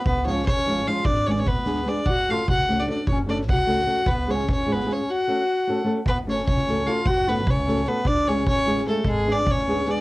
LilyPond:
<<
  \new Staff \with { instrumentName = "Fiddle" } { \time 5/8 \key fis \minor \tempo 4 = 150 b'8 cis''8 cis''4 eis''8 | d''8 cis''32 d''32 cis''16 b'4 d''8 | fis''8 eis''8 fis''8. d''16 d''8 | cis''8 d''8 fis''4. |
b'8 cis''8 cis''8 b'8 cis''8 | fis''2 r8 | b'8 cis''8 cis''4 eis''8 | fis''8 b'8 cis''4 b'8 |
d''8 cis''8 cis''4 a'8 | gis'8 d''8 cis''4 d''8 | }
  \new Staff \with { instrumentName = "Clarinet" } { \time 5/8 \key fis \minor b8 cis'8 cis'4 eis'8 | d'8 cis'32 d'32 cis'16 b4 d'8 | fis'8 eis'8 fis'8. d'16 d'8 | cis'8 d'8 fis'4. |
b8 cis'8 cis'8 b8 cis'8 | fis'2 r8 | b8 cis'8 cis'4 eis'8 | fis'8 b8 cis'4 b8 |
d'8 cis'8 cis'4 a8 | gis8 d'8 cis'4 d'8 | }
  \new Staff \with { instrumentName = "Nylon-string guitar" } { \time 5/8 \key fis \minor r8 <eis gis cis' eis'>8 r8 <eis gis cis' eis'>8 <eis gis cis' eis'>8 | r8 <gis b d' gis'>8 r8 <gis b d' gis'>8 <gis b d' gis'>8 | r8 <a cis' fis' a'>8 r8 <a cis' fis' a'>8 <a cis' fis' a'>8 | r8 <a cis' fis' a'>8 r8 <a cis' fis' a'>8 <a cis' fis' a'>8 |
r8 <gis cis' eis' gis'>8 r8 <gis cis' eis' gis'>8 <gis cis' eis' gis'>8 | r8 <a cis' fis' a'>8 r8 <a cis' fis' a'>8 <a cis' fis' a'>8 | r8 <a cis' fis' a'>8 r8 <a cis' fis' a'>8 <a cis' fis' a'>8 | r8 <a cis' fis' a'>8 r8 <a cis' fis' a'>8 <a cis' fis' a'>8 |
r8 <gis cis' eis' gis'>8 r8 <gis cis' eis' gis'>8 <gis cis' eis' gis'>8 | r8 <gis b d' gis'>8 r8 <gis b d' gis'>8 <gis b d' gis'>8 | }
  \new Staff \with { instrumentName = "Upright bass" } { \clef bass \time 5/8 \key fis \minor cis,4 gis,,4. | gis,,4 d,4. | fis,,4 cis,4. | fis,,4 cis,4. |
cis,4 gis,,4. | r2 r8 | fis,,4 cis,4. | fis,,4 cis,4. |
cis,4 gis,,4. | gis,,4 d,4. | }
  \new DrumStaff \with { instrumentName = "Drums" } \drummode { \time 5/8 bd8 sn16 sn16 bd16 sn16 sn16 sn16 sn8 | bd16 sn16 sn16 sn16 bd8 sn16 sn16 sn8 | bd8. sn16 bd16 sn16 sn16 sn16 sn8 | bd8 sn16 sn16 bd16 sn16 sn16 sn16 sn8 |
bd8 sn16 sn16 bd16 sn16 sn16 sn16 sn8 | r4 r4. | bd8 sn16 sn16 bd16 sn16 sn8 sn8 | bd8 sn16 sn16 bd16 sn16 sn16 sn16 sn8 |
bd8 sn16 sn16 bd16 sn16 sn16 sn16 sn8 | bd8. sn16 bd16 sn16 sn16 sn16 sn16 sn16 | }
>>